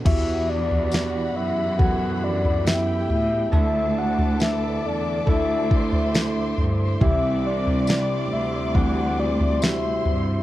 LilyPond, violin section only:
\new Staff \with { instrumentName = "Violin section" } { \time 4/4 \key e \minor \tempo 4 = 69 <fis' fis''>2. <g' g''>4 | <a' a''>2~ <a' a''>8 <c'' c'''>4. | <d'' d'''>2. <c'' c'''>4 | }